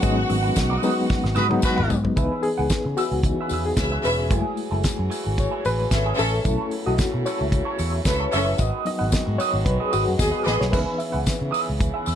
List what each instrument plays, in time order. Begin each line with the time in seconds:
Already playing: french horn section D#3 G#3 B3 F#4, reed electric piano F#3 G#3 B3 C#4 D#4, string section F#4 F#5
0.02 fingered electric bass G#1, reed electric piano F#3 G#3 B3 C#4, clean electric guitar F#4 B4 D#5, kick, closed hi-hat, tambourine
0.10 reed electric piano D#4
0.17 muted clean electric guitar stroke
0.28 fingered electric bass G#1, muted clean electric guitar stroke, open hi-hat
0.43 clean electric guitar F#4 B4 F#5
0.55 fingered electric bass B1, muted clean electric guitar stroke, kick, snare, closed hi-hat, tambourine
0.70 clean electric guitar F#4 B4 D#5
0.82 reed electric piano F#3 G#3 B3 D#4, clean electric guitar F#4 B4 D#5, open hi-hat, tambourine
0.95 muted clean electric guitar stroke
1.09 muted clean electric guitar stroke, kick, snare, tambourine
1.24 fingered electric bass G#1, muted clean electric guitar stroke, snare
1.35 fingered electric bass G#2, horn section G#3 F#4 B4, clean electric guitar F#4 B4 D#5, high tom, tambourine
1.49 reed electric piano F#3 G#3 B3 D#4, clean electric guitar F#4 B4 F#5, high tom
1.62 horn section G#3 F#4 B4, kick, tambourine
1.76 fingered electric bass G#1, clean electric guitar F#4 B4 F#5, mid tom
1.89 fingered electric bass G#2, muted clean electric guitar stroke, floor tom, tambourine
2.04 muted clean electric guitar stroke, floor tom
2.16 fingered electric bass C#2, french horn section C#3 E3 B3 G#4, reed electric piano E3 B3 D#4 B4, clean electric guitar G#4 B4 E5, kick, closed hi-hat, tambourine
2.43 reed electric piano G#4, muted clean electric guitar stroke, open hi-hat
2.58 fingered electric bass C#2, clean electric guitar G#4 B4 F#5
2.70 muted fingered electric bass stroke, muted clean electric guitar stroke, kick, snare, closed hi-hat, tambourine
2.85 fingered electric bass C#3, muted clean electric guitar stroke
2.97 reed electric piano F#4, clean electric guitar G#4 B4 E5, open hi-hat, tambourine
3.12 fingered electric bass C#2, muted clean electric guitar stroke
3.23 reed electric piano E3 B3 D#4, muted clean electric guitar stroke, kick, closed hi-hat, tambourine
3.41 clean electric guitar G#4 B4 E5
3.49 fingered electric bass E2, clean electric guitar G#4 B4, open hi-hat, tambourine
3.53 clean electric guitar E5
3.65 reed electric piano G#4, muted clean electric guitar stroke
3.77 fingered electric bass C#2, string section C#4 B4 E5, muted clean electric guitar stroke, kick, snare, closed hi-hat, tambourine
3.92 clean electric guitar G#4 B4 E5
4.04 fingered electric bass E1, string section C#4 B4 E5, reed electric piano B4, muted clean electric guitar stroke, open hi-hat, tambourine
4.19 muted clean electric guitar stroke
4.31 fingered electric bass F#1, french horn section E3 F#3 F#4, reed electric piano G#3 A3 E4, clean electric guitar A3 E4 G#4, kick, closed hi-hat, tambourine
4.57 muted clean electric guitar stroke, open hi-hat
4.71 fingered electric bass F#1, clean electric guitar A3 E4 A4
4.84 muted clean electric guitar stroke, muted fingered electric bass stroke, kick, snare, closed hi-hat, tambourine
4.98 fingered electric bass F#2, muted clean electric guitar stroke
5.10 clean electric guitar A3 E4 G#4, open hi-hat, tambourine
5.25 fingered electric bass G#1, muted clean electric guitar stroke
5.38 reed electric piano C#5, muted clean electric guitar stroke, kick, closed hi-hat, tambourine
5.51 clean electric guitar A3 E4 G#4
5.64 fingered electric bass A1, reed electric piano B4, muted clean electric guitar stroke, open hi-hat, tambourine
5.79 muted clean electric guitar stroke
5.91 fingered electric bass G#1, string section C#4 A4 E5, muted clean electric guitar stroke, kick, snare, closed hi-hat, tambourine
6.06 clean electric guitar A3 E4 G#4
6.17 fingered electric bass A1, clean electric guitar A3 E4 G#4, string section C#4 A4 E5, reed electric piano A4, open hi-hat, tambourine
6.33 muted clean electric guitar stroke
6.44 fingered electric bass B1, french horn section C#3 B3 E4, reed electric piano A3 C#4 E4, clean electric guitar E4 A4 C#5, kick, closed hi-hat, tambourine
6.71 muted clean electric guitar stroke, open hi-hat
6.86 fingered electric bass B1, clean electric guitar E4 A4 D#5, reed electric piano F#4
6.98 muted clean electric guitar stroke, muted fingered electric bass stroke, kick, snare, closed hi-hat, tambourine
7.12 fingered electric bass B2, muted clean electric guitar stroke
7.26 clean electric guitar E4 A4 C#5, reed electric piano C#5, open hi-hat, tambourine
7.41 fingered electric bass C#2, muted clean electric guitar stroke
7.52 muted clean electric guitar stroke, kick, closed hi-hat
7.65 clean electric guitar E4 A4 C#5
7.78 fingered electric bass E2, clean electric guitar E4 A4 C#5, open hi-hat, tambourine
7.93 muted clean electric guitar stroke
8.05 fingered electric bass C#2, string section C#4 A4 E5, reed electric piano B4, muted clean electric guitar stroke, kick, snare, closed hi-hat, tambourine
8.19 clean electric guitar E4 A4 C#5, reed electric piano C#5
8.31 fingered electric bass F#1, string section C#4 A4 E5, clean electric guitar E4 A4 C#5, reed electric piano E5, open hi-hat, tambourine
8.46 muted clean electric guitar stroke
8.58 fingered electric bass G#1, french horn section D#3 G#3 F#4, clean electric guitar F#4 B4 D#5, reed electric piano D#5, kick, closed hi-hat, tambourine
8.85 reed electric piano F#3 B3 D#4 D#5, muted clean electric guitar stroke, open hi-hat
8.99 fingered electric bass G#1, clean electric guitar F#4 B4 F#5
9.11 muted clean electric guitar stroke, muted fingered electric bass stroke, kick, snare, closed hi-hat, tambourine
9.26 fingered electric bass G#2, muted clean electric guitar stroke
9.38 clean electric guitar F#4 B4 D#5, reed electric piano C#5, open hi-hat, tambourine
9.54 fingered electric bass G#1, muted clean electric guitar stroke
9.65 fingered electric bass B1, reed electric piano B4, muted clean electric guitar stroke, kick, closed hi-hat
9.80 clean electric guitar F#4 B4 D#5, reed electric piano G#4
9.91 fingered electric bass G#1, clean electric guitar F#4 B4 D#5, reed electric piano F#4, open hi-hat, tambourine
10.06 fingered electric bass F#2, muted clean electric guitar stroke
10.17 fingered electric bass D#2, string section B3 G#4 D#5, reed electric piano G#4, muted clean electric guitar stroke, kick, snare, tambourine
10.31 clean electric guitar F#4 B4 D#5
10.43 fingered electric bass A1, string section B3 G#4 D#5, clean electric guitar F#4 B4 D#5, reed electric piano B4, snare
10.47 tambourine
10.57 fingered electric bass B1, reed electric piano C#5, muted clean electric guitar stroke, snare
10.70 fingered electric bass C#2, reed electric piano E3 B3 D#4 A#4 B4, french horn section E3 G#4, clean electric guitar G#4 B4 E5, kick, tambourine, splash
10.74 french horn section C#3
10.86 reed electric piano B4
10.98 reed electric piano E5, muted clean electric guitar stroke, open hi-hat, tambourine
11.12 fingered electric bass C#2, clean electric guitar G#4 B4 F#5
11.26 muted clean electric guitar stroke, muted fingered electric bass stroke, kick, snare, closed hi-hat, tambourine
11.39 fingered electric bass C#3, muted clean electric guitar stroke
11.51 clean electric guitar G#4 B4 E5, open hi-hat, tambourine
11.67 fingered electric bass C#2, muted clean electric guitar stroke
11.79 muted clean electric guitar stroke, kick, closed hi-hat, tambourine
11.94 clean electric guitar G#4 B4 E5
12.06 fingered electric bass E2, clean electric guitar G#4 B4 E5, open hi-hat, tambourine